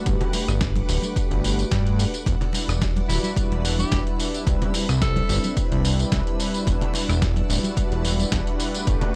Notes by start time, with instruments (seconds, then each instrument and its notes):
Already playing: analog synth pad A3 D4 F#4 G4 B4, string machine F#5
0.06 analog synth bass G1, string machine B4 D6, kick, closed hi-hat, tambourine
0.21 closed hi-hat, low conga
0.33 analog synth pad A3 D4 F#4 G4 B4, open hi-hat, tambourine, muted conga
0.48 analog synth bass G1, cross-stick, closed hi-hat, tambourine
0.61 kick, snare, closed hi-hat, tambourine
0.75 analog synth pad A3 D4 F#4 G4 B4, closed hi-hat, muted conga, high conga
0.89 analog synth bass D1, open hi-hat, tambourine
1.02 closed hi-hat, tambourine, high conga
1.16 analog synth pad A3 D4 F#4 G4 B4, kick, closed hi-hat, tambourine
1.31 analog synth bass G1, closed hi-hat
1.43 analog synth pad A3 D4 F#4 G4 B4, open hi-hat, tambourine
1.59 closed hi-hat, tambourine
1.71 analog synth bass G2, kick, snare, closed hi-hat, tambourine
1.86 analog synth pad A3 D4 F#4 G4 B4, closed hi-hat
1.99 open hi-hat, tambourine
2.14 closed hi-hat, tambourine
2.26 analog synth bass E1, string machine D5 E6, kick, closed hi-hat, tambourine
2.41 closed hi-hat, low conga
2.53 analog synth pad G3 D4 E4 F#4 B4, open hi-hat, tambourine, muted conga
2.68 analog synth bass E1, cross-stick, closed hi-hat, tambourine
2.82 kick, snare, closed hi-hat, tambourine
2.96 analog synth pad G3 D4 E4 F#4 B4, closed hi-hat, high conga
3.09 analog synth bass D1, tenor saxophone E4, open hi-hat, tambourine
3.23 tenor saxophone E4, closed hi-hat, tambourine, high conga
3.36 analog synth bass E1, analog synth pad G3 D4 E4 F#4 B4, kick, closed hi-hat, tambourine
3.51 analog synth bass E1, closed hi-hat
3.65 open hi-hat, tambourine
3.78 analog synth pad G3 D4 E4 F#4 B4, tenor saxophone G4, closed hi-hat, tambourine, high conga
3.92 analog synth bass E1, kick, snare, closed hi-hat, tambourine
4.06 analog synth pad G3 D4 E4 F#4 B4, closed hi-hat
4.20 open hi-hat, tambourine
4.34 analog synth pad G3 C4 D4 E4 B4, closed hi-hat, tambourine
4.46 analog synth bass C2, string machine C4 B5, kick, closed hi-hat, tambourine
4.62 closed hi-hat, low conga
4.73 analog synth pad G3 C4 D4 E4 B4, open hi-hat, tambourine, muted conga
4.89 analog synth bass C2, cross-stick, closed hi-hat, tambourine
5.02 tenor saxophone A4, kick, snare, closed hi-hat, tambourine
5.15 analog synth pad G3 C4 D4 E4 B4, closed hi-hat, muted conga, high conga
5.29 analog synth bass G1, open hi-hat, tambourine
5.44 closed hi-hat, tambourine, high conga
5.56 analog synth pad G3 C4 D4 E4 B4, kick, closed hi-hat, tambourine
5.72 analog synth bass C2, closed hi-hat
5.85 open hi-hat, tambourine
5.98 analog synth pad G3 C4 D4 E4 B4, closed hi-hat, tambourine
6.12 analog synth bass C2, kick, snare, closed hi-hat, tambourine
6.26 analog synth pad G3 C4 D4 E4 B4, closed hi-hat
6.40 open hi-hat, tambourine
6.53 analog synth pad G3 D4 E4 F#4 B4, closed hi-hat, tambourine
6.66 analog synth bass E1, string machine D5 F#5, kick, closed hi-hat, tambourine
6.81 closed hi-hat, low conga
6.94 analog synth pad G3 D4 E4 F#4 B4, open hi-hat, tambourine, muted conga
7.09 analog synth bass E1, cross-stick, closed hi-hat, tambourine
7.22 kick, snare, closed hi-hat, tambourine
7.36 analog synth pad G3 D4 E4 F#4 B4, closed hi-hat, high conga
7.49 analog synth bass D1, open hi-hat, tambourine
7.63 closed hi-hat, tambourine, high conga
7.77 analog synth bass E1, analog synth pad G3 D4 E4 F#4 B4, kick, closed hi-hat, tambourine
7.92 analog synth bass E1, closed hi-hat
8.05 open hi-hat, tambourine
8.19 analog synth pad G3 D4 E4 F#4 B4, closed hi-hat, tambourine, high conga
8.32 analog synth bass E1, kick, snare, closed hi-hat, tambourine
8.46 analog synth pad G3 D4 E4 F#4 B4, closed hi-hat
8.60 open hi-hat, tambourine
8.74 analog synth pad A3 D4 F#4 G4 B4, closed hi-hat, tambourine
8.87 analog synth bass G1, string machine B4 F#5 D6, kick, closed hi-hat, tambourine
9.01 closed hi-hat, low conga